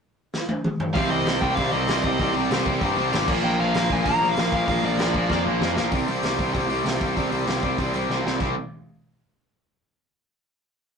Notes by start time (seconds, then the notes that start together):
0.34 snare
0.49 high tom
0.64 mid tom
0.80 floor tom
0.94 C2 C3 G3 C4 F5, kick, open hi-hat
1.10 C3 G3 C4 D#5
1.26 C2 C3 G3 C4, snare, open hi-hat
1.41 C2 C3 G3 C4 G5, kick
1.55 C2 C3 G3 C4 F5, kick, open hi-hat
1.71 C2 C3 G3 C4 D#5
1.88 C2 C3 G3 C4, snare, open hi-hat
2.03 C3 G3 C4 D#5, kick
2.19 C2 C3 G3 C4, kick, open hi-hat
2.35 C2 C3 G3 C4
2.51 C2 C3 G3 C4, snare, open hi-hat
2.66 C3 G3 C4, kick
2.81 G2 C3 G3 C4, kick, open hi-hat
2.97 C2 C3 G3 C4
3.12 G#1 C3 G3 C4, snare, open hi-hat
3.28 A#1 A#2 F3 A#3, kick, crash
3.43 A#1 A#2 F3 A#3 G5
3.59 A#2 F3 A#3 F5
3.74 A#1 A#2 F3 A#3, snare, open hi-hat
3.90 A#1 A#2 F3 A#3 G#5, kick
4.05 A#1 A#2 F3 A#3 A#5, kick, open hi-hat
4.21 A#1 A#2 F3 A#3
4.29 F5
4.37 A#1 A#2 F3 A#3, snare, open hi-hat
4.52 A#2 F3 A#3 F5, kick
4.67 A#1 A#2 F3 A#3 F5, kick, open hi-hat
4.83 A#1 A#2 F3 A#3 D5
4.99 A#1 A#2 F3 A#3, snare, open hi-hat
5.14 A#2 F3 A#3, kick
5.29 F2 A#2 F3 A#3, kick, snare
5.45 A#1 A#2 F3 A#3
5.61 F2 A#2 F3 A#3, snare
5.76 A#1 A#2 F3 A#3, snare
5.92 C2 C3 G3 C4, kick, open hi-hat
6.08 C2 C3 G3 C4, open hi-hat
6.22 C2 C3 G3 C4, snare, open hi-hat
6.38 C2 C3 G3 C4, kick, open hi-hat
6.52 C2 C3 G3 C4, kick, open hi-hat
6.68 C2 C3 G3 C4, open hi-hat
6.83 C2 C3 G3 C4, snare, open hi-hat
7.00 C2 C3 G3 C4, kick, open hi-hat
7.16 C2 C3 G3 C4, kick, open hi-hat
7.31 C2 C3 G3 C4, open hi-hat
7.47 C2 C3 G3 C4, snare, open hi-hat
7.62 C2 C3 G3 C4, kick, open hi-hat
7.78 C2 C3 G3 C4, kick, open hi-hat
7.93 C2 C3 G3 C4, open hi-hat
8.09 C2 C3 G3 C4, snare
8.25 C2 C3 G3 C4, snare
8.39 C2 C3 G3 C4, kick, crash